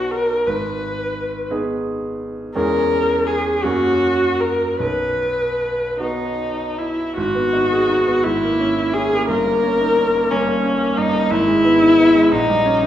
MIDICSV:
0, 0, Header, 1, 3, 480
1, 0, Start_track
1, 0, Key_signature, 5, "major"
1, 0, Tempo, 700935
1, 316, Time_signature, 6, 3, 24, 8
1, 2237, Tempo, 750939
1, 2717, Tempo, 790514
1, 4635, Key_signature, 5, "minor"
1, 4637, Tempo, 705053
1, 6077, Tempo, 672646
1, 8626, End_track
2, 0, Start_track
2, 0, Title_t, "Viola"
2, 0, Program_c, 0, 41
2, 0, Note_on_c, 0, 66, 61
2, 80, Note_on_c, 0, 70, 60
2, 90, Note_off_c, 0, 66, 0
2, 318, Note_on_c, 0, 71, 54
2, 328, Note_off_c, 0, 70, 0
2, 1027, Note_off_c, 0, 71, 0
2, 1744, Note_on_c, 0, 70, 87
2, 2237, Note_on_c, 0, 68, 66
2, 2247, Note_off_c, 0, 70, 0
2, 2474, Note_on_c, 0, 66, 70
2, 2484, Note_off_c, 0, 68, 0
2, 2951, Note_on_c, 0, 70, 60
2, 2960, Note_off_c, 0, 66, 0
2, 3193, Note_off_c, 0, 70, 0
2, 3198, Note_on_c, 0, 71, 58
2, 3909, Note_off_c, 0, 71, 0
2, 3922, Note_on_c, 0, 63, 56
2, 4398, Note_on_c, 0, 64, 51
2, 4407, Note_off_c, 0, 63, 0
2, 4626, Note_off_c, 0, 64, 0
2, 4630, Note_on_c, 0, 66, 74
2, 5358, Note_on_c, 0, 64, 79
2, 5368, Note_off_c, 0, 66, 0
2, 5831, Note_on_c, 0, 68, 82
2, 5841, Note_off_c, 0, 64, 0
2, 6063, Note_off_c, 0, 68, 0
2, 6067, Note_on_c, 0, 70, 86
2, 6799, Note_on_c, 0, 61, 71
2, 6810, Note_off_c, 0, 70, 0
2, 7273, Note_on_c, 0, 63, 80
2, 7284, Note_off_c, 0, 61, 0
2, 7515, Note_on_c, 0, 64, 94
2, 7526, Note_off_c, 0, 63, 0
2, 8233, Note_on_c, 0, 63, 81
2, 8244, Note_off_c, 0, 64, 0
2, 8626, Note_off_c, 0, 63, 0
2, 8626, End_track
3, 0, Start_track
3, 0, Title_t, "Grand piano"
3, 0, Program_c, 1, 0
3, 0, Control_c, 1, 64, 127
3, 0, Note_on_c, 1, 35, 44
3, 0, Note_on_c, 1, 59, 27
3, 0, Note_on_c, 1, 63, 31
3, 0, Note_on_c, 1, 66, 29
3, 295, Note_off_c, 1, 59, 0
3, 296, Note_off_c, 1, 63, 0
3, 297, Note_off_c, 1, 66, 0
3, 323, Note_on_c, 1, 32, 40
3, 326, Control_c, 1, 64, 0
3, 332, Note_off_c, 1, 35, 0
3, 425, Control_c, 1, 64, 127
3, 1008, Note_off_c, 1, 32, 0
3, 1030, Note_on_c, 1, 59, 36
3, 1034, Note_on_c, 1, 63, 34
3, 1037, Note_on_c, 1, 68, 38
3, 1717, Note_off_c, 1, 59, 0
3, 1719, Note_off_c, 1, 63, 0
3, 1720, Note_off_c, 1, 68, 0
3, 1750, Note_on_c, 1, 40, 53
3, 1750, Note_on_c, 1, 56, 36
3, 1754, Control_c, 1, 64, 0
3, 1754, Note_on_c, 1, 61, 36
3, 1757, Note_on_c, 1, 68, 36
3, 1864, Control_c, 1, 64, 127
3, 2452, Note_off_c, 1, 56, 0
3, 2455, Note_off_c, 1, 61, 0
3, 2456, Note_off_c, 1, 68, 0
3, 2457, Note_off_c, 1, 40, 0
3, 2475, Note_on_c, 1, 58, 32
3, 2477, Note_on_c, 1, 42, 49
3, 2482, Note_on_c, 1, 61, 35
3, 2486, Note_on_c, 1, 66, 36
3, 2489, Control_c, 1, 64, 0
3, 2583, Control_c, 1, 64, 127
3, 3168, Note_off_c, 1, 58, 0
3, 3172, Note_off_c, 1, 61, 0
3, 3173, Note_off_c, 1, 42, 0
3, 3174, Note_off_c, 1, 66, 0
3, 3190, Note_on_c, 1, 35, 39
3, 3204, Control_c, 1, 64, 0
3, 3322, Control_c, 1, 64, 127
3, 3898, Note_off_c, 1, 35, 0
3, 3915, Note_on_c, 1, 59, 24
3, 3920, Note_on_c, 1, 63, 24
3, 3923, Note_on_c, 1, 66, 31
3, 4608, Note_off_c, 1, 59, 0
3, 4610, Note_off_c, 1, 63, 0
3, 4611, Note_off_c, 1, 66, 0
3, 4633, Note_on_c, 1, 32, 47
3, 4647, Control_c, 1, 64, 0
3, 4753, Note_on_c, 1, 59, 39
3, 4779, Control_c, 1, 64, 127
3, 4877, Note_on_c, 1, 63, 38
3, 4949, Note_off_c, 1, 59, 0
3, 4998, Note_on_c, 1, 68, 37
3, 5072, Note_off_c, 1, 63, 0
3, 5121, Note_on_c, 1, 63, 36
3, 5193, Note_off_c, 1, 68, 0
3, 5245, Note_on_c, 1, 59, 37
3, 5315, Note_off_c, 1, 63, 0
3, 5340, Note_off_c, 1, 32, 0
3, 5365, Note_off_c, 1, 59, 0
3, 5369, Note_on_c, 1, 32, 45
3, 5376, Control_c, 1, 64, 0
3, 5490, Note_on_c, 1, 58, 38
3, 5494, Control_c, 1, 64, 127
3, 5604, Note_on_c, 1, 61, 41
3, 5679, Note_off_c, 1, 58, 0
3, 5735, Note_on_c, 1, 64, 41
3, 5794, Note_off_c, 1, 61, 0
3, 5847, Note_on_c, 1, 61, 41
3, 5918, Note_off_c, 1, 64, 0
3, 5960, Note_on_c, 1, 58, 44
3, 6031, Note_off_c, 1, 61, 0
3, 6057, Note_off_c, 1, 32, 0
3, 6073, Note_on_c, 1, 31, 48
3, 6076, Note_off_c, 1, 58, 0
3, 6089, Control_c, 1, 64, 0
3, 6183, Control_c, 1, 64, 127
3, 6194, Note_on_c, 1, 58, 40
3, 6320, Note_on_c, 1, 61, 38
3, 6389, Note_off_c, 1, 58, 0
3, 6441, Note_on_c, 1, 63, 39
3, 6512, Note_off_c, 1, 61, 0
3, 6556, Note_on_c, 1, 61, 38
3, 6632, Note_off_c, 1, 63, 0
3, 6687, Note_on_c, 1, 58, 43
3, 6748, Note_off_c, 1, 61, 0
3, 6805, Note_on_c, 1, 43, 38
3, 6873, Note_off_c, 1, 58, 0
3, 6923, Note_on_c, 1, 58, 38
3, 6992, Note_off_c, 1, 43, 0
3, 7040, Note_on_c, 1, 61, 45
3, 7111, Note_off_c, 1, 58, 0
3, 7163, Note_on_c, 1, 58, 42
3, 7230, Note_off_c, 1, 61, 0
3, 7277, Note_on_c, 1, 43, 42
3, 7351, Note_off_c, 1, 58, 0
3, 7398, Note_on_c, 1, 58, 40
3, 7467, Note_off_c, 1, 43, 0
3, 7485, Note_off_c, 1, 31, 0
3, 7514, Note_on_c, 1, 32, 58
3, 7516, Note_off_c, 1, 58, 0
3, 7527, Control_c, 1, 64, 0
3, 7629, Note_on_c, 1, 56, 43
3, 7641, Control_c, 1, 64, 127
3, 7756, Note_on_c, 1, 59, 45
3, 7823, Note_off_c, 1, 56, 0
3, 7875, Note_on_c, 1, 63, 38
3, 7948, Note_off_c, 1, 59, 0
3, 8000, Note_on_c, 1, 59, 45
3, 8069, Note_off_c, 1, 63, 0
3, 8111, Note_on_c, 1, 56, 44
3, 8191, Note_off_c, 1, 59, 0
3, 8215, Note_off_c, 1, 32, 0
3, 8234, Note_off_c, 1, 56, 0
3, 8234, Note_on_c, 1, 34, 46
3, 8249, Control_c, 1, 64, 0
3, 8352, Control_c, 1, 64, 127
3, 8356, Note_on_c, 1, 55, 44
3, 8475, Note_on_c, 1, 61, 47
3, 8547, Note_off_c, 1, 55, 0
3, 8594, Note_on_c, 1, 63, 50
3, 8626, Note_off_c, 1, 34, 0
3, 8626, Note_off_c, 1, 61, 0
3, 8626, Note_off_c, 1, 63, 0
3, 8626, End_track
0, 0, End_of_file